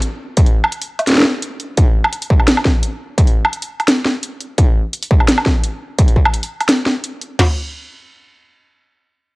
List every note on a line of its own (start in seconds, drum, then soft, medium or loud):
0.02 closed hi-hat medium
0.37 kick loud
0.37 closed hi-hat medium
0.46 open hi-hat soft
0.64 low woodblock medium
0.72 closed hi-hat medium
0.82 open hi-hat medium
0.99 closed hi-hat soft
0.99 low woodblock soft
1.07 snare medium
1.07 closed hi-hat medium
1.10 snare medium
1.12 snare medium
1.15 snare medium
1.18 snare medium
1.20 snare loud
1.22 snare loud
1.25 snare medium
1.42 closed hi-hat medium
1.60 closed hi-hat soft
1.77 kick loud
1.77 closed hi-hat medium
2.04 low woodblock medium
2.13 closed hi-hat medium
2.22 open hi-hat medium
2.30 kick loud
2.40 low woodblock soft
2.48 snare loud
2.48 closed hi-hat medium
2.57 low woodblock medium
2.65 kick medium
2.65 snare medium
2.83 closed hi-hat medium
3.18 kick loud
3.18 closed hi-hat medium
3.27 open hi-hat soft
3.45 low woodblock medium
3.53 closed hi-hat medium
3.62 open hi-hat medium
3.80 closed hi-hat soft
3.80 low woodblock soft
3.88 snare loud
3.88 closed hi-hat medium
4.06 snare medium
4.23 closed hi-hat medium
4.41 closed hi-hat soft
4.58 kick loud
4.58 closed hi-hat medium
4.93 closed hi-hat medium
5.03 open hi-hat medium
5.11 kick loud
5.20 low woodblock soft
5.28 snare loud
5.28 closed hi-hat medium
5.38 low woodblock medium
5.46 kick medium
5.46 snare medium
5.63 closed hi-hat medium
5.99 kick loud
5.99 closed hi-hat medium
6.08 open hi-hat soft
6.16 kick medium
6.25 low woodblock medium
6.34 closed hi-hat medium
6.43 open hi-hat medium
6.61 closed hi-hat soft
6.61 low woodblock soft
6.69 snare loud
6.69 closed hi-hat medium
6.86 snare medium
7.04 closed hi-hat medium
7.21 closed hi-hat soft
7.39 snare loud
7.39 floor tom loud
7.39 crash medium